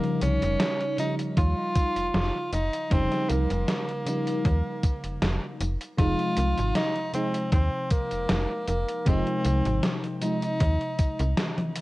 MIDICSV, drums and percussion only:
0, 0, Header, 1, 2, 480
1, 0, Start_track
1, 0, Key_signature, -4, "minor"
1, 0, Tempo, 769231
1, 1818, Time_signature, 4, 2, 24, 8
1, 7371, End_track
2, 0, Start_track
2, 0, Title_t, "Drums"
2, 23, Note_on_c, 9, 42, 36
2, 85, Note_off_c, 9, 42, 0
2, 134, Note_on_c, 9, 42, 76
2, 134, Note_on_c, 9, 54, 62
2, 197, Note_off_c, 9, 42, 0
2, 197, Note_off_c, 9, 54, 0
2, 263, Note_on_c, 9, 42, 51
2, 263, Note_on_c, 9, 54, 36
2, 326, Note_off_c, 9, 42, 0
2, 326, Note_off_c, 9, 54, 0
2, 373, Note_on_c, 9, 38, 121
2, 373, Note_on_c, 9, 42, 77
2, 373, Note_on_c, 9, 54, 28
2, 436, Note_off_c, 9, 38, 0
2, 436, Note_off_c, 9, 42, 0
2, 436, Note_off_c, 9, 54, 0
2, 502, Note_on_c, 9, 42, 36
2, 565, Note_off_c, 9, 42, 0
2, 613, Note_on_c, 9, 42, 76
2, 613, Note_on_c, 9, 54, 60
2, 675, Note_off_c, 9, 42, 0
2, 675, Note_off_c, 9, 54, 0
2, 742, Note_on_c, 9, 42, 51
2, 742, Note_on_c, 9, 54, 35
2, 804, Note_off_c, 9, 42, 0
2, 804, Note_off_c, 9, 54, 0
2, 854, Note_on_c, 9, 42, 75
2, 854, Note_on_c, 9, 54, 27
2, 856, Note_on_c, 9, 36, 115
2, 916, Note_off_c, 9, 42, 0
2, 916, Note_off_c, 9, 54, 0
2, 918, Note_off_c, 9, 36, 0
2, 1095, Note_on_c, 9, 42, 75
2, 1095, Note_on_c, 9, 54, 60
2, 1096, Note_on_c, 9, 36, 108
2, 1157, Note_off_c, 9, 42, 0
2, 1157, Note_off_c, 9, 54, 0
2, 1158, Note_off_c, 9, 36, 0
2, 1224, Note_on_c, 9, 42, 49
2, 1224, Note_on_c, 9, 54, 33
2, 1287, Note_off_c, 9, 42, 0
2, 1287, Note_off_c, 9, 54, 0
2, 1336, Note_on_c, 9, 38, 117
2, 1336, Note_on_c, 9, 42, 77
2, 1336, Note_on_c, 9, 54, 27
2, 1399, Note_off_c, 9, 38, 0
2, 1399, Note_off_c, 9, 42, 0
2, 1399, Note_off_c, 9, 54, 0
2, 1575, Note_on_c, 9, 42, 76
2, 1575, Note_on_c, 9, 54, 64
2, 1638, Note_off_c, 9, 42, 0
2, 1638, Note_off_c, 9, 54, 0
2, 1705, Note_on_c, 9, 42, 51
2, 1705, Note_on_c, 9, 54, 36
2, 1767, Note_off_c, 9, 42, 0
2, 1767, Note_off_c, 9, 54, 0
2, 1816, Note_on_c, 9, 36, 115
2, 1817, Note_on_c, 9, 42, 78
2, 1817, Note_on_c, 9, 54, 27
2, 1878, Note_off_c, 9, 36, 0
2, 1880, Note_off_c, 9, 42, 0
2, 1880, Note_off_c, 9, 54, 0
2, 1944, Note_on_c, 9, 38, 36
2, 1944, Note_on_c, 9, 42, 36
2, 2006, Note_off_c, 9, 38, 0
2, 2006, Note_off_c, 9, 42, 0
2, 2054, Note_on_c, 9, 42, 75
2, 2054, Note_on_c, 9, 54, 63
2, 2117, Note_off_c, 9, 42, 0
2, 2117, Note_off_c, 9, 54, 0
2, 2184, Note_on_c, 9, 42, 51
2, 2184, Note_on_c, 9, 54, 37
2, 2246, Note_off_c, 9, 42, 0
2, 2246, Note_off_c, 9, 54, 0
2, 2295, Note_on_c, 9, 38, 115
2, 2295, Note_on_c, 9, 42, 76
2, 2295, Note_on_c, 9, 54, 28
2, 2358, Note_off_c, 9, 38, 0
2, 2358, Note_off_c, 9, 42, 0
2, 2358, Note_off_c, 9, 54, 0
2, 2425, Note_on_c, 9, 42, 36
2, 2487, Note_off_c, 9, 42, 0
2, 2536, Note_on_c, 9, 42, 75
2, 2536, Note_on_c, 9, 54, 63
2, 2599, Note_off_c, 9, 42, 0
2, 2599, Note_off_c, 9, 54, 0
2, 2664, Note_on_c, 9, 42, 50
2, 2664, Note_on_c, 9, 54, 36
2, 2727, Note_off_c, 9, 42, 0
2, 2727, Note_off_c, 9, 54, 0
2, 2776, Note_on_c, 9, 36, 112
2, 2777, Note_on_c, 9, 42, 79
2, 2777, Note_on_c, 9, 54, 28
2, 2839, Note_off_c, 9, 36, 0
2, 2839, Note_off_c, 9, 42, 0
2, 2839, Note_off_c, 9, 54, 0
2, 3016, Note_on_c, 9, 36, 104
2, 3016, Note_on_c, 9, 42, 76
2, 3016, Note_on_c, 9, 54, 64
2, 3078, Note_off_c, 9, 36, 0
2, 3078, Note_off_c, 9, 42, 0
2, 3078, Note_off_c, 9, 54, 0
2, 3144, Note_on_c, 9, 42, 49
2, 3144, Note_on_c, 9, 54, 35
2, 3206, Note_off_c, 9, 42, 0
2, 3206, Note_off_c, 9, 54, 0
2, 3258, Note_on_c, 9, 38, 115
2, 3258, Note_on_c, 9, 42, 75
2, 3258, Note_on_c, 9, 54, 28
2, 3320, Note_off_c, 9, 38, 0
2, 3320, Note_off_c, 9, 42, 0
2, 3320, Note_off_c, 9, 54, 0
2, 3498, Note_on_c, 9, 42, 79
2, 3498, Note_on_c, 9, 54, 65
2, 3561, Note_off_c, 9, 42, 0
2, 3561, Note_off_c, 9, 54, 0
2, 3626, Note_on_c, 9, 42, 50
2, 3626, Note_on_c, 9, 54, 38
2, 3688, Note_off_c, 9, 42, 0
2, 3688, Note_off_c, 9, 54, 0
2, 3736, Note_on_c, 9, 36, 117
2, 3737, Note_on_c, 9, 42, 78
2, 3737, Note_on_c, 9, 54, 28
2, 3799, Note_off_c, 9, 36, 0
2, 3800, Note_off_c, 9, 42, 0
2, 3800, Note_off_c, 9, 54, 0
2, 3864, Note_on_c, 9, 42, 37
2, 3927, Note_off_c, 9, 42, 0
2, 3974, Note_on_c, 9, 42, 77
2, 3974, Note_on_c, 9, 54, 68
2, 4036, Note_off_c, 9, 42, 0
2, 4036, Note_off_c, 9, 54, 0
2, 4103, Note_on_c, 9, 42, 51
2, 4103, Note_on_c, 9, 54, 38
2, 4166, Note_off_c, 9, 42, 0
2, 4166, Note_off_c, 9, 54, 0
2, 4213, Note_on_c, 9, 38, 116
2, 4213, Note_on_c, 9, 42, 80
2, 4213, Note_on_c, 9, 54, 29
2, 4276, Note_off_c, 9, 38, 0
2, 4276, Note_off_c, 9, 42, 0
2, 4276, Note_off_c, 9, 54, 0
2, 4341, Note_on_c, 9, 42, 35
2, 4404, Note_off_c, 9, 42, 0
2, 4454, Note_on_c, 9, 42, 75
2, 4454, Note_on_c, 9, 54, 66
2, 4516, Note_off_c, 9, 42, 0
2, 4516, Note_off_c, 9, 54, 0
2, 4582, Note_on_c, 9, 42, 53
2, 4582, Note_on_c, 9, 54, 38
2, 4645, Note_off_c, 9, 42, 0
2, 4645, Note_off_c, 9, 54, 0
2, 4694, Note_on_c, 9, 42, 78
2, 4694, Note_on_c, 9, 54, 29
2, 4697, Note_on_c, 9, 36, 108
2, 4756, Note_off_c, 9, 42, 0
2, 4756, Note_off_c, 9, 54, 0
2, 4759, Note_off_c, 9, 36, 0
2, 4934, Note_on_c, 9, 42, 76
2, 4934, Note_on_c, 9, 54, 64
2, 4937, Note_on_c, 9, 36, 101
2, 4996, Note_off_c, 9, 42, 0
2, 4996, Note_off_c, 9, 54, 0
2, 4999, Note_off_c, 9, 36, 0
2, 5062, Note_on_c, 9, 42, 50
2, 5062, Note_on_c, 9, 54, 37
2, 5124, Note_off_c, 9, 42, 0
2, 5124, Note_off_c, 9, 54, 0
2, 5174, Note_on_c, 9, 38, 115
2, 5174, Note_on_c, 9, 42, 78
2, 5174, Note_on_c, 9, 54, 30
2, 5236, Note_off_c, 9, 38, 0
2, 5236, Note_off_c, 9, 42, 0
2, 5236, Note_off_c, 9, 54, 0
2, 5414, Note_on_c, 9, 42, 77
2, 5414, Note_on_c, 9, 54, 68
2, 5476, Note_off_c, 9, 42, 0
2, 5476, Note_off_c, 9, 54, 0
2, 5544, Note_on_c, 9, 42, 53
2, 5544, Note_on_c, 9, 54, 39
2, 5606, Note_off_c, 9, 42, 0
2, 5606, Note_off_c, 9, 54, 0
2, 5654, Note_on_c, 9, 42, 80
2, 5654, Note_on_c, 9, 54, 29
2, 5657, Note_on_c, 9, 36, 117
2, 5717, Note_off_c, 9, 42, 0
2, 5717, Note_off_c, 9, 54, 0
2, 5719, Note_off_c, 9, 36, 0
2, 5783, Note_on_c, 9, 42, 38
2, 5845, Note_off_c, 9, 42, 0
2, 5894, Note_on_c, 9, 42, 81
2, 5894, Note_on_c, 9, 54, 68
2, 5956, Note_off_c, 9, 42, 0
2, 5956, Note_off_c, 9, 54, 0
2, 6024, Note_on_c, 9, 42, 53
2, 6024, Note_on_c, 9, 54, 39
2, 6086, Note_off_c, 9, 42, 0
2, 6086, Note_off_c, 9, 54, 0
2, 6134, Note_on_c, 9, 38, 116
2, 6134, Note_on_c, 9, 42, 81
2, 6134, Note_on_c, 9, 54, 30
2, 6197, Note_off_c, 9, 38, 0
2, 6197, Note_off_c, 9, 42, 0
2, 6197, Note_off_c, 9, 54, 0
2, 6264, Note_on_c, 9, 42, 38
2, 6326, Note_off_c, 9, 42, 0
2, 6374, Note_on_c, 9, 42, 78
2, 6374, Note_on_c, 9, 54, 68
2, 6436, Note_off_c, 9, 42, 0
2, 6436, Note_off_c, 9, 54, 0
2, 6503, Note_on_c, 9, 42, 54
2, 6503, Note_on_c, 9, 54, 39
2, 6565, Note_off_c, 9, 42, 0
2, 6565, Note_off_c, 9, 54, 0
2, 6615, Note_on_c, 9, 42, 83
2, 6615, Note_on_c, 9, 54, 30
2, 6617, Note_on_c, 9, 36, 109
2, 6677, Note_off_c, 9, 42, 0
2, 6677, Note_off_c, 9, 54, 0
2, 6679, Note_off_c, 9, 36, 0
2, 6744, Note_on_c, 9, 42, 37
2, 6806, Note_off_c, 9, 42, 0
2, 6855, Note_on_c, 9, 42, 82
2, 6855, Note_on_c, 9, 54, 66
2, 6857, Note_on_c, 9, 36, 104
2, 6917, Note_off_c, 9, 42, 0
2, 6917, Note_off_c, 9, 54, 0
2, 6919, Note_off_c, 9, 36, 0
2, 6984, Note_on_c, 9, 42, 54
2, 6984, Note_on_c, 9, 54, 39
2, 7046, Note_off_c, 9, 42, 0
2, 7046, Note_off_c, 9, 54, 0
2, 7096, Note_on_c, 9, 38, 113
2, 7096, Note_on_c, 9, 42, 78
2, 7096, Note_on_c, 9, 48, 62
2, 7096, Note_on_c, 9, 54, 30
2, 7158, Note_off_c, 9, 38, 0
2, 7158, Note_off_c, 9, 42, 0
2, 7158, Note_off_c, 9, 48, 0
2, 7158, Note_off_c, 9, 54, 0
2, 7224, Note_on_c, 9, 42, 38
2, 7224, Note_on_c, 9, 48, 64
2, 7287, Note_off_c, 9, 42, 0
2, 7287, Note_off_c, 9, 48, 0
2, 7335, Note_on_c, 9, 42, 82
2, 7335, Note_on_c, 9, 54, 69
2, 7371, Note_off_c, 9, 42, 0
2, 7371, Note_off_c, 9, 54, 0
2, 7371, End_track
0, 0, End_of_file